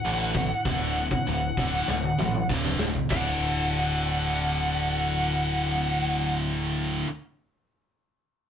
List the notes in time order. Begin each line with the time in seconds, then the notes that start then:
Already playing: F#5
0.04 A1 D2 A2 D3, open hi-hat
0.34 D2 A2, kick, open hi-hat
0.65 D1 D2 A2 D3, kick, open hi-hat
0.96 D2 A2, open hi-hat
1.11 kick
1.26 D1 D2 A2, open hi-hat
1.57 D1 D2 A2 D3, kick, open hi-hat
1.88 D1 D2 A2, snare
2.03 high tom
2.19 A1 D2 A2, mid tom
2.34 mid tom
2.49 D1 D2 A2 D3, kick
2.65 mid tom
2.79 D2 A2, snare
2.95 floor tom
3.09 D1 D2 A2 F#5, kick, crash
3.13 D3